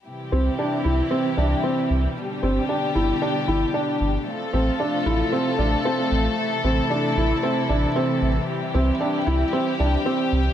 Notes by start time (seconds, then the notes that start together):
0.06 C3 E3 G3 E4 G4
0.32 C2 C4
0.59 D4
0.85 C2 E4
1.11 C4
1.37 C2 D4
1.64 C4
1.90 C2
2.17 B2 D3 D4 G4
2.43 G1 C4
2.69 D4
2.95 G1 E4
3.22 D4
3.48 G1 E4
3.74 D4
4.01 G1
4.27 C3 F3 A3 F4 A4
4.53 A1 C4
4.80 D4
5.06 A1 E4
5.32 C4
5.58 A1 D4
5.85 C4
6.11 A1
6.38 E3 E4
6.64 A1 C4
6.90 D4
7.17 A1 E4
7.43 C4
7.69 A1 D4
7.96 C4
8.22 A1
8.48 G3 E4 G4
8.74 C2 C4
9.00 D4
9.27 C2 E4
9.53 C4
9.79 C2 D4
10.06 C4
10.32 C2